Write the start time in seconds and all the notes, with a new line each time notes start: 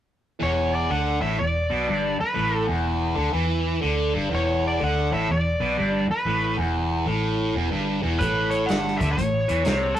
0.40 E1 E2 C#5
0.75 D5
0.90 D2 D3 F#5
1.21 A1 A2 E5
1.38 E1 E2 D5
1.70 B1 B2
1.87 G1 G2
2.20 B4, muted overdriven electric guitar stroke, muted fingered electric bass stroke
2.35 A1 A2
2.67 E1 E2
3.15 D2 D3
3.33 E2 E3
3.82 D2 D3
4.14 G1 G2
4.31 E1 E2 C#5
4.67 D5
4.80 D2 D3
4.84 F#5
5.12 A1 A2 E5
5.29 E1 E2 D5
5.60 B1 B2
5.77 G1 G2
6.09 B4, muted overdriven electric guitar stroke, muted fingered electric bass stroke
6.25 A1 A2
6.57 E1 E2
7.06 A1 A2
7.55 E1 E2
7.71 G1 G2
8.03 E1 E2
8.19 A1 A2 B4, kick, closed hi-hat
8.50 C#5, closed hi-hat
8.66 G1 G2 F#5, closed hi-hat
8.70 snare
8.87 snare
8.97 D2 D3 E5, kick, closed hi-hat
9.12 C#5
9.17 A1 A2, kick, closed hi-hat
9.49 E2 E3, closed hi-hat
9.65 C2 C3, snare, closed hi-hat
9.94 A4, muted overdriven electric guitar stroke, closed hi-hat